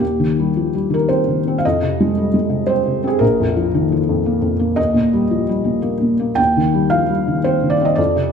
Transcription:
felt piano
0.00 D#2 G4
0.20 D#3
0.39 G3
0.57 F3
0.75 G3
0.90 D#3 A#4
1.09 C4 C5
1.28 D#3
1.47 C4
1.58 F5
1.65 F2 D#5
1.82 C3
2.00 G#3
2.17 G3
2.34 G#3
2.50 C3
2.67 C4 C5
2.86 C3
3.04 C4 G#4
3.19 A#1 A#4
3.40 F2
3.57 F3
3.74 D#3
3.92 F3
4.09 F2
4.26 A#3
4.42 F2
4.59 A#3
4.76 D#2 D#5
4.94 A#2
5.13 G3
5.31 F3
5.49 G3
5.64 A#2
5.82 A#3
6.01 A#2
6.20 A#3
6.35 D#2 G5
6.57 D#3
6.74 G3
6.90 F3 F5
7.08 G3
7.28 D#3
7.44 C4 C5
7.63 D#3
7.70 D5
7.81 C4 D#5
7.95 F2 D5
8.16 C3

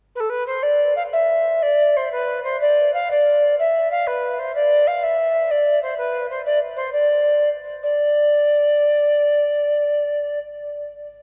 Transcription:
recorder
0.16 B4
0.20 A4
0.30 B4
0.47 C5
0.63 D5
0.97 F5
1.13 E5
1.63 D5
1.97 C5
2.12 B4
2.44 C5
2.61 D5
2.94 F5
3.11 D5
3.59 E5
3.91 F5
4.07 B4
4.39 C5
4.55 D5
4.87 F5
5.03 E5
5.51 D5
5.83 C5
5.98 B4
6.30 C5
6.45 D5
6.76 C5
6.93 D5
7.83 D5

